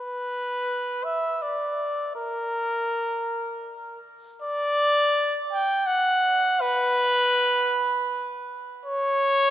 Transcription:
0, 0, Header, 1, 2, 480
1, 0, Start_track
1, 0, Key_signature, 2, "minor"
1, 0, Tempo, 500000
1, 9123, End_track
2, 0, Start_track
2, 0, Title_t, "Trumpet"
2, 0, Program_c, 0, 56
2, 0, Note_on_c, 0, 71, 76
2, 999, Note_on_c, 0, 76, 71
2, 1013, Note_off_c, 0, 71, 0
2, 1363, Note_on_c, 0, 74, 62
2, 1377, Note_off_c, 0, 76, 0
2, 2066, Note_off_c, 0, 74, 0
2, 2072, Note_on_c, 0, 70, 81
2, 3831, Note_off_c, 0, 70, 0
2, 4245, Note_on_c, 0, 74, 99
2, 5254, Note_off_c, 0, 74, 0
2, 5304, Note_on_c, 0, 79, 86
2, 5632, Note_on_c, 0, 78, 89
2, 5646, Note_off_c, 0, 79, 0
2, 6344, Note_on_c, 0, 71, 103
2, 6359, Note_off_c, 0, 78, 0
2, 8142, Note_off_c, 0, 71, 0
2, 8501, Note_on_c, 0, 73, 115
2, 9123, Note_off_c, 0, 73, 0
2, 9123, End_track
0, 0, End_of_file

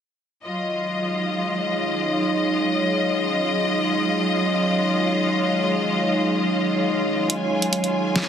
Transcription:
0, 0, Header, 1, 4, 480
1, 0, Start_track
1, 0, Key_signature, -6, "minor"
1, 0, Tempo, 500000
1, 7953, End_track
2, 0, Start_track
2, 0, Title_t, "String section"
2, 0, Program_c, 0, 48
2, 423, Note_on_c, 0, 54, 78
2, 424, Note_on_c, 0, 65, 74
2, 424, Note_on_c, 0, 75, 88
2, 6989, Note_off_c, 0, 75, 0
2, 7005, Note_on_c, 0, 80, 87
2, 7953, Note_off_c, 0, 54, 0
2, 7953, Note_off_c, 0, 65, 0
2, 7953, Note_off_c, 0, 80, 0
2, 7953, End_track
3, 0, Start_track
3, 0, Title_t, "Ambient pad"
3, 0, Program_c, 1, 92
3, 424, Note_on_c, 1, 63, 78
3, 486, Note_on_c, 1, 68, 77
3, 744, Note_on_c, 1, 73, 70
3, 7953, Note_off_c, 1, 63, 0
3, 7953, Note_off_c, 1, 68, 0
3, 7953, Note_off_c, 1, 73, 0
3, 7953, End_track
4, 0, Start_track
4, 0, Title_t, "Drums"
4, 7006, Note_on_c, 9, 42, 68
4, 7102, Note_off_c, 9, 42, 0
4, 7318, Note_on_c, 9, 42, 47
4, 7414, Note_off_c, 9, 42, 0
4, 7418, Note_on_c, 9, 42, 71
4, 7514, Note_off_c, 9, 42, 0
4, 7525, Note_on_c, 9, 42, 50
4, 7621, Note_off_c, 9, 42, 0
4, 7830, Note_on_c, 9, 38, 109
4, 7830, Note_on_c, 9, 42, 70
4, 7926, Note_off_c, 9, 38, 0
4, 7926, Note_off_c, 9, 42, 0
4, 7953, End_track
0, 0, End_of_file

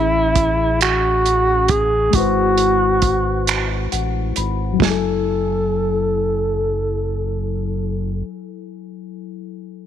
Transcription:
0, 0, Header, 1, 5, 480
1, 0, Start_track
1, 0, Key_signature, 3, "minor"
1, 0, Tempo, 888889
1, 1151, Time_signature, 6, 3, 24, 8
1, 5328, End_track
2, 0, Start_track
2, 0, Title_t, "FM electric piano"
2, 0, Program_c, 0, 5
2, 0, Control_c, 0, 64, 127
2, 0, Note_on_c, 0, 45, 55
2, 0, Note_on_c, 0, 52, 50
2, 0, Note_on_c, 0, 61, 51
2, 0, Note_on_c, 0, 68, 56
2, 1129, Note_off_c, 0, 52, 0
2, 1137, Note_off_c, 0, 61, 0
2, 1138, Note_on_c, 0, 56, 50
2, 1139, Note_off_c, 0, 45, 0
2, 1145, Note_off_c, 0, 68, 0
2, 1151, Note_on_c, 0, 64, 44
2, 1159, Control_c, 0, 64, 0
2, 1161, Note_on_c, 0, 66, 48
2, 1173, Note_on_c, 0, 71, 48
2, 1183, Note_on_c, 0, 72, 60
2, 1250, Control_c, 0, 64, 127
2, 2118, Note_on_c, 0, 78, 50
2, 2338, Note_off_c, 0, 78, 0
2, 2361, Note_on_c, 0, 83, 56
2, 2556, Note_on_c, 0, 54, 64
2, 2563, Note_off_c, 0, 56, 0
2, 2569, Note_off_c, 0, 64, 0
2, 2575, Note_off_c, 0, 66, 0
2, 2580, Note_off_c, 0, 83, 0
2, 2581, Note_off_c, 0, 71, 0
2, 2585, Note_off_c, 0, 72, 0
2, 2587, Note_on_c, 0, 64, 53
2, 2598, Control_c, 0, 64, 0
2, 2618, Note_on_c, 0, 80, 57
2, 2647, Note_on_c, 0, 69, 65
2, 2683, Control_c, 0, 64, 127
2, 4802, Note_off_c, 0, 54, 0
2, 4818, Note_off_c, 0, 64, 0
2, 4833, Note_off_c, 0, 80, 0
2, 4848, Note_off_c, 0, 69, 0
2, 5328, End_track
3, 0, Start_track
3, 0, Title_t, "Tenor saxophone"
3, 0, Program_c, 1, 66
3, 0, Note_on_c, 1, 64, 79
3, 422, Note_off_c, 1, 64, 0
3, 443, Note_on_c, 1, 66, 85
3, 922, Note_on_c, 1, 68, 84
3, 930, Note_off_c, 1, 66, 0
3, 1162, Note_on_c, 1, 66, 88
3, 1170, Note_off_c, 1, 68, 0
3, 2117, Note_off_c, 1, 66, 0
3, 2600, Note_on_c, 1, 69, 74
3, 4446, Note_off_c, 1, 69, 0
3, 5328, End_track
4, 0, Start_track
4, 0, Title_t, "Analog synth bass"
4, 0, Program_c, 2, 38
4, 0, Note_on_c, 2, 33, 93
4, 1132, Note_off_c, 2, 33, 0
4, 1158, Note_on_c, 2, 32, 93
4, 2093, Note_off_c, 2, 32, 0
4, 2121, Note_on_c, 2, 33, 78
4, 2335, Note_off_c, 2, 33, 0
4, 2361, Note_on_c, 2, 32, 82
4, 2574, Note_off_c, 2, 32, 0
4, 2597, Note_on_c, 2, 30, 79
4, 4445, Note_off_c, 2, 30, 0
4, 5328, End_track
5, 0, Start_track
5, 0, Title_t, "Drums"
5, 192, Note_on_c, 9, 42, 49
5, 193, Note_on_c, 9, 36, 68
5, 246, Note_off_c, 9, 42, 0
5, 247, Note_off_c, 9, 36, 0
5, 437, Note_on_c, 9, 42, 60
5, 445, Note_on_c, 9, 26, 83
5, 491, Note_off_c, 9, 42, 0
5, 499, Note_off_c, 9, 26, 0
5, 678, Note_on_c, 9, 42, 40
5, 732, Note_off_c, 9, 42, 0
5, 910, Note_on_c, 9, 42, 46
5, 915, Note_on_c, 9, 36, 79
5, 964, Note_off_c, 9, 42, 0
5, 969, Note_off_c, 9, 36, 0
5, 1151, Note_on_c, 9, 42, 66
5, 1153, Note_on_c, 9, 36, 89
5, 1205, Note_off_c, 9, 42, 0
5, 1207, Note_off_c, 9, 36, 0
5, 1391, Note_on_c, 9, 42, 42
5, 1445, Note_off_c, 9, 42, 0
5, 1630, Note_on_c, 9, 42, 48
5, 1632, Note_on_c, 9, 36, 60
5, 1684, Note_off_c, 9, 42, 0
5, 1686, Note_off_c, 9, 36, 0
5, 1876, Note_on_c, 9, 42, 58
5, 1885, Note_on_c, 9, 26, 81
5, 1930, Note_off_c, 9, 42, 0
5, 1939, Note_off_c, 9, 26, 0
5, 2118, Note_on_c, 9, 42, 41
5, 2172, Note_off_c, 9, 42, 0
5, 2353, Note_on_c, 9, 42, 46
5, 2407, Note_off_c, 9, 42, 0
5, 2592, Note_on_c, 9, 36, 77
5, 2603, Note_on_c, 9, 38, 80
5, 2646, Note_off_c, 9, 36, 0
5, 2657, Note_off_c, 9, 38, 0
5, 5328, End_track
0, 0, End_of_file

